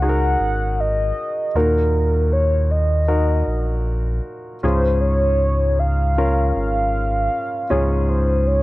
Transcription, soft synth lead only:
0.03 0.82 F#5 loud
0.80 1.58 D#5 medium
1.57 2.34 A#4 medium
2.33 2.73 C#5 medium
2.71 4.25 D#5 medium
4.64 5.00 C5 medium
5.01 5.81 C#5 medium
5.79 6.55 F5 loud
6.56 7.72 F5 loud
7.70 8.10 C#5 medium
8.09 8.49 C5 medium
8.47 8.63 C#5 medium

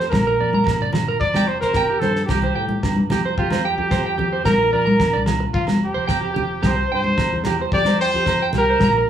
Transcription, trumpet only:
0.09 0.88 A#4 medium
1.20 1.49 D5 loud
1.48 1.60 C5 medium
1.61 2.01 A#4 medium
1.99 2.25 A4 medium
2.25 3.04 G4 medium
3.38 3.63 F4 medium
3.64 4.42 G4 medium
4.45 4.71 A#4 loud
4.73 5.23 A#4 medium
5.53 5.66 F4 medium
5.84 6.68 G4 medium
6.66 6.92 C5 medium
6.95 7.43 C5 medium
7.73 7.98 D5 loud
8.01 8.50 C5 loud
8.57 9.10 A#4 medium

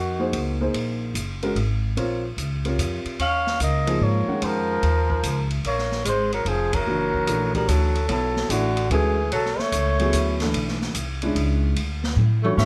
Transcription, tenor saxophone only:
0.00 0.58 D#3 medium
3.20 3.58 C#4 medium
3.61 4.02 A#3 medium
4.02 4.44 A#3 medium
4.43 5.51 F3 medium
5.66 6.03 A#3 medium
6.05 6.30 G#3 medium
6.33 6.48 F#3 medium
6.46 6.74 F3 medium
6.73 7.54 F#3 medium
7.55 7.69 G3 medium
7.68 8.07 F#3 medium
8.08 8.51 F#3 medium
8.50 8.90 D3 medium
8.91 9.28 E3 medium
9.33 9.60 F#3 medium
9.58 10.40 A3 medium
12.43 12.56 A3 medium
12.57 12.65 C#4 medium

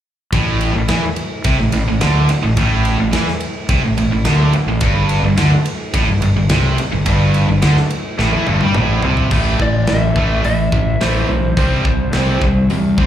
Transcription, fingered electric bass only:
0.32 0.72 A1 loud
0.75 0.88 A1 medium
0.90 1.03 E2 medium
1.45 1.58 C2 medium
1.60 1.72 A1 medium
1.73 1.86 A1 medium
1.87 2.00 A1 medium
2.01 2.27 D2 medium
2.30 muted fingered electric bass stroke soft
2.44 2.56 A1 medium
2.57 2.96 A1 loud
2.99 3.12 A1 medium
3.13 3.26 E2 medium
3.69 3.82 C2 medium
3.83 3.96 A1 medium
3.97 4.10 A1 medium
4.10 4.24 A1 medium
4.25 4.52 D2 medium
4.52 muted fingered electric bass stroke soft
4.67 4.80 A1 medium
4.81 5.21 G1 medium
5.23 5.36 G1 medium
5.37 5.50 D2 loud
5.94 6.06 A1 medium
6.07 6.20 G1 medium
6.20 6.34 G1 medium
6.36 6.49 G1 medium
6.50 6.76 C2 medium
6.79 muted fingered electric bass stroke soft
6.93 7.06 G1 medium
7.06 7.45 G1 medium
7.49 7.62 G1 medium
7.64 7.76 D2 medium
8.19 8.32 A1 loud
8.33 8.46 E2 medium
8.47 8.60 G1 medium
8.61 8.74 G2 medium
8.75 9.01 A1 medium
9.02 9.29 C2 medium
9.31 9.57 A1 medium
9.59 9.85 A1 medium
9.89 10.14 A1 medium
10.16 10.41 A1 medium
10.45 10.70 A1 medium
10.72 10.98 A1 medium
11.00 11.26 A1 medium
11.28 11.54 B1 medium
11.57 11.83 C2 medium
11.84 12.10 C2 medium
12.14 12.39 C2 medium
12.41 12.67 C2 medium
12.70 12.96 E2 medium
12.97 13.06 C2 medium

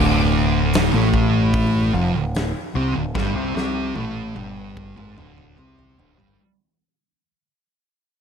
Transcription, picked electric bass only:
0.00 0.89 D1 loud
0.93 1.90 A1 medium
1.94 2.12 F1 loud
2.14 2.52 D1 medium
2.75 2.94 C2 loud
2.96 3.14 D1 medium
3.15 3.34 G1 loud
3.35 3.54 C2 loud
3.54 3.92 C2 medium
3.95 4.33 A1 medium
4.36 4.93 G1 medium
4.97 5.16 G#1 loud
5.18 5.55 D1 loud
5.58 5.96 C2 medium
5.99 6.17 D1 medium
6.19 6.37 G1 loud

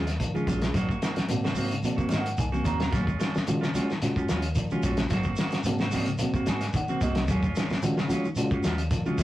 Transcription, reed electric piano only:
0.34 0.75 G#3 medium
0.34 0.75 C#4 medium
0.34 0.75 F4 medium
0.34 0.75 G#4 medium
1.30 1.46 A#3 medium
1.30 1.46 C4 medium
1.30 1.46 F#4 loud
1.56 1.72 A#3 medium
1.56 1.72 C4 medium
1.56 1.72 F#4 medium
1.84 2.22 A#3 medium
1.84 2.22 C4 medium
1.84 2.22 F#4 medium
2.12 2.21 D#5 medium
2.21 2.38 F#5 medium
2.40 2.65 G#5 medium
2.52 2.93 A#3 medium
2.52 2.93 C4 medium
2.52 2.93 F#4 medium
2.66 2.92 A#5 medium
3.48 3.63 G#3 medium
3.48 3.63 C#4 medium
3.48 3.64 F4 medium
3.48 3.64 F#4 medium
3.75 3.91 G#3 medium
3.75 3.91 C#4 medium
3.75 3.91 F4 medium
3.75 3.91 F#4 loud
4.03 4.40 G#3 medium
4.03 4.40 C#4 medium
4.03 4.40 F4 medium
4.03 4.40 F#4 medium
4.71 5.11 G#3 medium
4.71 5.12 C#4 medium
4.71 5.12 F4 medium
4.71 5.12 F#4 medium
5.66 5.82 A#3 medium
5.66 5.81 C4 medium
5.66 5.81 F#4 loud
5.93 6.08 A#3 medium
5.93 6.08 C4 medium
5.93 6.08 F#4 loud
6.21 6.58 A#3 medium
6.21 6.58 C4 medium
6.21 6.58 F#4 medium
6.49 6.73 G#5 medium
6.76 7.00 F#5 medium
6.89 7.29 A#3 medium
6.89 7.29 C4 medium
6.89 7.29 F#4 medium
7.02 7.27 D#5 medium
7.82 7.98 G#3 medium
7.82 7.98 C#4 medium
7.82 7.98 F4 medium
7.82 7.98 F#4 loud
8.08 8.25 G#3 medium
8.08 8.25 C#4 medium
8.08 8.25 F4 medium
8.08 8.25 F#4 loud
8.37 8.74 G#3 medium
8.37 8.74 C#4 medium
8.37 8.74 F4 medium
8.37 8.75 F#4 loud
9.06 9.23 G#3 medium
9.06 9.23 C#4 medium
9.06 9.23 F4 medium
9.06 9.23 F#4 medium

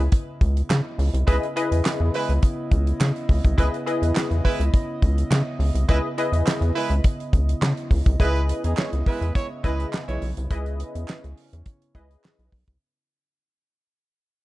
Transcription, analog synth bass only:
0.41 0.62 C#2 loud
0.70 0.81 C#3 loud
0.98 1.10 C#2 loud
1.14 1.24 C2 medium
1.28 1.39 C#2 loud
1.72 1.82 E2 medium
2.00 2.10 E2 loud
2.29 2.39 C#2 medium
2.71 2.93 C#2 loud
3.01 3.12 C#3 loud
3.29 3.41 C#2 loud
3.44 3.55 C2 loud
3.58 3.69 C#2 loud
4.02 4.12 E2 medium
4.31 4.41 E2 medium
4.60 4.70 C#2 medium
5.02 5.24 C#2 loud
5.31 5.42 C#3 loud
5.59 5.71 C#2 loud
5.75 5.85 C2 medium
5.89 6.00 C#2 loud
6.32 6.43 E2 loud
6.61 6.71 E2 loud
6.90 7.00 C#2 medium
7.33 7.55 C#2 medium
7.62 7.73 C#3 loud
7.91 8.02 C#2 loud
8.06 8.16 C2 loud
8.20 8.53 C#2 loud
8.64 8.74 E2 loud
8.93 9.03 C#2 medium
9.21 9.31 E2 medium
9.64 9.85 C#2 medium
10.08 10.18 B1 medium
10.22 10.33 B1 loud
10.38 10.47 C2 loud
10.51 10.83 C#2 loud
10.95 11.05 E2 medium
11.24 11.34 C#2 medium
11.53 11.63 E2 medium
11.95 12.16 C#2 medium
12.39 12.49 B1 loud
12.53 12.64 B1 loud
12.68 12.78 C2 medium

